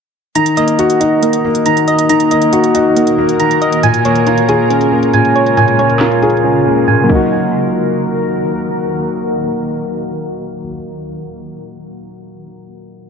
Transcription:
0.35 D#3 A#3 F#4 A#4 A#5, closed hi-hat
0.46 closed hi-hat
0.57 A#3 D#5, closed hi-hat
0.68 closed hi-hat
0.79 F#4, closed hi-hat
0.90 closed hi-hat
1.01 D#4 F#4, closed hi-hat
1.22 A#3, closed hi-hat
1.33 closed hi-hat
1.44 A#3
1.55 closed hi-hat
1.66 D#3 A#5, closed hi-hat
1.77 closed hi-hat
1.88 D#5, closed hi-hat
1.99 closed hi-hat
2.09 D#3 A#5, closed hi-hat
2.20 closed hi-hat
2.31 A#3 D#5, closed hi-hat
2.42 closed hi-hat
2.53 F#4, closed hi-hat
2.64 closed hi-hat
2.75 D#4 F#4, closed hi-hat
2.96 A#3, closed hi-hat
3.07 closed hi-hat
3.18 A#3
3.29 closed hi-hat
3.40 D#3 A#5, closed hi-hat
3.51 closed hi-hat
3.62 D#5, closed hi-hat
3.72 closed hi-hat
3.83 A#2 C#3 G#3 F4 G#5, closed hi-hat
3.94 closed hi-hat
4.05 A#3 C#5, closed hi-hat
4.15 closed hi-hat
4.27 F4 A#4, closed hi-hat
4.38 closed hi-hat
4.49 F4 G#4, closed hi-hat
4.70 C#4, closed hi-hat
4.81 closed hi-hat
4.92 A#3
5.03 closed hi-hat
5.14 A#2 G#5, closed hi-hat
5.25 closed hi-hat
5.36 C#5, closed hi-hat
5.46 closed hi-hat
5.57 A#2 G#5, closed hi-hat
5.68 closed hi-hat
5.79 A#3 C#5, closed hi-hat
5.90 closed hi-hat
6.00 F4 A#4, snare, clap, closed hi-hat
6.12 closed hi-hat
6.22 F4 G#4, closed hi-hat
6.30 closed hi-hat
6.37 closed hi-hat
6.44 C#4
6.66 A#3
6.88 A#2 G#5
7.03 F#3 A#3
7.07 D#3 A#3 D#4 F#4 A#4, kick, crash
7.11 D#4
7.15 F#4

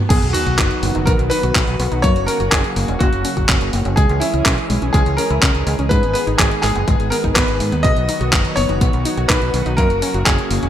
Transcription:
Already playing: swell
0.09 B1 D#3 F#3 B3 F#4 G#4, kick, closed hi-hat, crash, sub drop
0.22 B1, closed hi-hat
0.33 D#4 F#4, open hi-hat
0.46 B1 F#4, closed hi-hat
0.59 F#1 D#4, kick, clap, closed hi-hat
0.71 closed hi-hat
0.83 F#1 B3, open hi-hat
0.95 F#1 D#4, closed hi-hat
1.06 B1 B3 A#4, kick, closed hi-hat
1.19 B1, closed hi-hat
1.30 D#4 B4, open hi-hat
1.43 B1 F#4, closed hi-hat
1.55 B1 D#4, kick, clap, closed hi-hat
1.67 B1, closed hi-hat
1.80 B1 B3, open hi-hat
1.92 B1 D#4, closed hi-hat
2.02 F#2 C#3 F#3 A#3 C#5, kick, closed hi-hat
2.16 F#1, closed hi-hat
2.27 C#4 A#4, open hi-hat
2.40 F#1 F#4, closed hi-hat
2.51 F#1 C#4 G#4, kick, clap, closed hi-hat
2.64 closed hi-hat
2.76 F#1 A#3, open hi-hat
2.88 E1 C#4, closed hi-hat
2.99 F#1 A#3 F#4, kick, closed hi-hat
3.13 F#1, closed hi-hat
3.25 C#4, open hi-hat
3.37 F#1 F#4, kick, closed hi-hat
3.49 F#1 C#4, kick, clap, closed hi-hat
3.61 F#1, closed hi-hat
3.73 F#1 A#3, open hi-hat
3.85 F#1 C#4, closed hi-hat
3.96 C#2 E3 G#3 C#4 G#4, kick, closed hi-hat
4.09 C#2, closed hi-hat
4.20 C#4 E4, open hi-hat
4.34 C#2 E4, closed hi-hat
4.46 B1 C#4, kick, clap, closed hi-hat
4.58 closed hi-hat
4.70 B1 G#3, open hi-hat
4.82 B1 C#4, closed hi-hat
4.93 C#2 G#3 G#4, kick, closed hi-hat
5.06 C#2, closed hi-hat
5.17 C#4 A#4, open hi-hat
5.30 C#2 E4, closed hi-hat
5.42 C#2 C#4, kick, clap, closed hi-hat
5.55 C#2, closed hi-hat
5.67 C#2 G#3, open hi-hat
5.79 C#2 C#4, closed hi-hat
5.89 G#2 D#3 G#3 B3 B4, kick, closed hi-hat
6.03 G#1, closed hi-hat
6.13 B3 B4, open hi-hat
6.27 G#1 D#4, closed hi-hat
6.38 G#1 B3 G#4, kick, clap, closed hi-hat
6.51 closed hi-hat
6.62 G#1 G#3 G#4, clap, open hi-hat
6.76 F#1 B3, closed hi-hat
6.88 G#1 G#3, kick, closed hi-hat
7.00 G#1, closed hi-hat
7.10 B3 A#4, open hi-hat
7.24 G#1 D#4, kick, closed hi-hat
7.34 G#1 B3 B4, kick, clap, closed hi-hat
7.48 G#1, closed hi-hat
7.60 G#2 G#3, open hi-hat
7.72 D#2 B3, closed hi-hat
7.83 B1 F#3 B3 F#4 D#5, kick, closed hi-hat
7.97 B1, closed hi-hat
8.09 D#4, open hi-hat
8.21 B1 F#4, closed hi-hat
8.33 F#1 D#4, kick, clap, closed hi-hat
8.45 closed hi-hat
8.56 F#1 B3 C#5, open hi-hat
8.69 F#1 D#4, closed hi-hat
8.81 B1 B3, kick, closed hi-hat
8.93 B1, closed hi-hat
9.05 D#4, open hi-hat
9.17 B1 F#4, closed hi-hat
9.28 B1 D#4 B4, kick, clap, closed hi-hat
9.42 B1, closed hi-hat
9.54 B1 B3, open hi-hat
9.66 B1 D#4, closed hi-hat
9.77 F#2 C#3 F#3 A#3 A#4, kick, closed hi-hat
9.90 F#1, closed hi-hat
10.02 C#4, open hi-hat
10.14 F#1 F#4, closed hi-hat
10.25 F#1 C#4 G#4, kick, clap, closed hi-hat
10.39 closed hi-hat
10.51 F#1 A#3, open hi-hat
10.63 E1 C#4, closed hi-hat

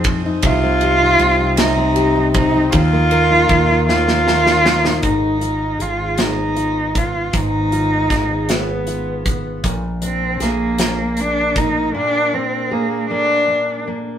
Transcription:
Already playing: F2 F3 C4 D#4 G#4
0.04 C4, kick, ride
0.26 D#4
0.42 C2 C3 F4, kick, ride
0.64 C4
0.81 G4, ride
1.01 D#4
1.19 C2 C4, ride
1.40 D#4
1.57 C3 D#4, snare, ride
1.77 C4
1.96 G4, ride
2.16 D#4
2.34 C4 D#4, kick, ride
2.54 D#4
2.72 D#2 D#3 F4, kick, ride
2.93 A#3
3.11 A#4, ride
3.31 D#4
3.49 D#2 A#3, kick, ride
3.70 D#4
3.89 D#3 F4, snare
4.07 A#3, snare
4.27 A#4, snare
4.45 D#4, snare
4.64 A#3, snare
4.83 D#4, snare
5.03 G#1 G#2 D#4, kick, closed hi-hat
5.41 F4, closed hi-hat
5.79 G#1 F4 G#4, closed hi-hat
6.18 B3 D#4, snare, closed hi-hat
6.56 F4, closed hi-hat
6.95 B3 F4, kick, closed hi-hat
7.33 G#1 G#2 D#4, kick, closed hi-hat
7.72 F4, closed hi-hat
8.10 G#1 G#4, kick, snare, closed hi-hat
8.49 B3, snare, closed hi-hat
8.87 F4, closed hi-hat
9.26 B3, kick, closed hi-hat
9.64 A#1 A#2, kick, closed hi-hat
10.02 C4 D4, closed hi-hat
10.40 A#1 A#3 G#4, snare, closed hi-hat
10.78 A#3, snare, closed hi-hat
11.17 D4, closed hi-hat
11.56 A#3 D#4, kick, closed hi-hat
11.95 A#2 D4
12.33 C4 D4
12.71 A#3 G#4
13.11 A#3 D4
13.48 D4
13.87 A#3

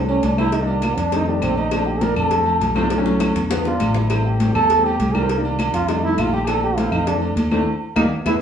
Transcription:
Already playing: C2
0.00 E3 G3 A3 D4
0.07 C#4, high conga, low agogo
0.23 C2 D4, cowbell, high conga, low agogo
0.37 E3 G3 A3 C4 E4, high conga, low agogo, claves
0.45 E3 G3 A3 C4
0.52 D#4, cowbell, high conga
0.60 D#3 G3 A#3 D4
0.67 G3, high conga, low agogo
0.82 A#3, cowbell, high conga, low agogo, claves
0.97 F2 D4, cowbell, high conga
1.12 D#3 G3 A3 C4 D#4, cowbell, high conga, low agogo
1.26 D#3 G3 A3 D4, high conga
1.42 A#1 C4, cowbell, high conga, low agogo, claves
1.57 D#4, high conga, low agogo
1.71 D3 F3 A3 C4 D4, cowbell, high conga, low agogo, claves
1.87 G4, high conga
2.01 D3 F3 A3 D4 A#4, cowbell, high conga, low agogo
2.16 F2 A4, low conga, low agogo, claves
2.31 cowbell, high conga, low conga
2.38 D3 F3 A3 C4
2.46 high conga, low agogo
2.61 B1, cowbell, high conga, low timbale, low agogo
2.75 D3 F3 A3 C4, high conga, low agogo, claves
2.83 D3 F3 A3 D4
2.90 cowbell, high bongo
2.97 D3 F#3 A3 C#4
3.05 high bongo, high conga, low agogo
3.20 cowbell, high bongo, high conga, low agogo, claves
3.35 E2, cowbell, low bongo, high conga
3.50 D3 F3 G#3 B3, cowbell, low bongo, high conga, low agogo
3.65 D3 F3 G#3 D4 F4, low bongo, high conga
3.80 A1, cowbell, low bongo, high conga, low agogo, claves
3.94 E4, low bongo, low agogo
4.09 E3 G3 A3 C4, cowbell, high conga, low agogo, claves
4.25 G4, high conga
4.39 E3 G3 A3 C4, cowbell, high conga, low agogo
4.55 E2 A4, low conga, low agogo, claves
4.70 cowbell, high conga
4.77 E3 G3 A3 C4
4.85 G4, high conga, low agogo
4.99 C2, cowbell, high conga, low agogo
5.14 E3 G3 A3 D4 A#4, high conga, low agogo, claves
5.22 E3 G3 A3 C4
5.29 cowbell, high conga
5.37 D#3 G3 A#3 D4
5.44 high conga, low agogo
5.59 cowbell, high conga, low agogo, claves
5.73 F2 F4, cowbell, high conga
5.88 D#3 G3 A3 D4 D#4, cowbell, high conga, low agogo
6.03 D#3 G3 A3 D#4 E4, high conga
6.17 A#1 F4, cowbell, high conga, low timbale, low agogo, claves
6.33 G4, high conga, low agogo
6.47 E3 A3 C4 D4 A4, cowbell, high conga, low agogo, claves
6.63 G4, high conga
6.77 E3 A3 C4 E4 F4, cowbell, high conga, low agogo
6.92 F2 D#4, low conga, low agogo, claves
7.07 D4, cowbell, high conga, low conga
7.14 E3 A3 C4 D4
7.22 high conga, low agogo
7.36 D#2, cowbell, high conga, low agogo
7.51 E3 A3 C4 D4, high conga, low agogo, claves
7.59 E3 A3 C4 E4
7.96 D#2 D#3 G3 A#3 D#4, cowbell, high conga, high timbale, claves
8.26 E2 E3 G#3 B3 E4, cowbell, high conga, high timbale, claves

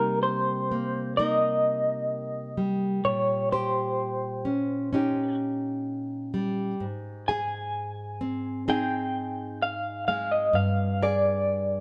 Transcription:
Already playing: C3 G3 A#3 D#4 A#4
0.23 C5
0.71 A#3
1.17 A#3 D#4 A#4 D#5
2.57 G3
3.05 A#2 C#5
3.52 G4 C5
4.45 C#4
4.93 C#4 D#4 G4
6.34 G3
6.80 G#2
7.28 G#4 G#5
8.21 C4
8.68 C4 D#4 G#4 G5
9.62 F5
10.08 G#3 F5
10.31 D#5
10.53 G2 F5
11.02 G#4 D5

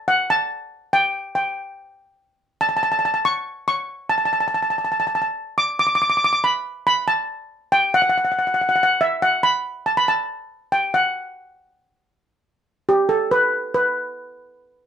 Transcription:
0.08 F#5
0.30 A5
0.93 G5
1.35 G5
2.61 A5
2.77 A5
2.83 A5
2.92 A5
2.99 A5
3.05 A5
3.14 A5
3.25 C#6
3.68 C#6
4.09 A5
4.18 A5
4.25 A5
4.33 A5
4.40 A5
4.48 A5
4.54 A5
4.63 A5
4.70 A5
4.78 A5
4.85 A5
4.92 A5
5.00 A5
5.07 A5
5.15 A5
5.22 A5
5.58 D6
5.79 D6
5.87 D6
5.95 D6
6.02 D6
6.10 D6
6.17 D6
6.24 D6
6.33 D6
6.44 B5
6.87 B5
7.08 A5
7.72 G5
7.94 F#5
8.02 F#5
8.09 F#5
8.18 F#5
8.25 F#5
8.32 F#5
8.39 F#5
8.47 F#5
8.54 F#5
8.61 F#5
8.69 F#5
8.76 F#5
8.83 F#5
9.01 E5
9.22 F#5
9.43 B5
9.86 A5
9.97 B5
10.08 A5
10.72 G5
10.94 F#5
12.89 G4
13.09 A4
13.31 B4
13.74 B4

